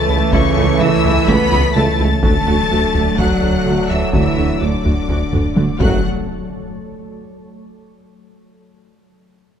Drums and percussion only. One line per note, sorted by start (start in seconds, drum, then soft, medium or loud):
0.33 taiko loud
1.04 taiko low medium
1.28 taiko medium
1.52 taiko low medium
2.23 taiko loud
2.95 taiko low medium
3.18 taiko medium
3.42 taiko low medium
4.13 taiko medium
4.85 taiko low medium
5.09 taiko medium
5.33 taiko low-mid medium
5.56 taiko high medium
5.80 taiko medium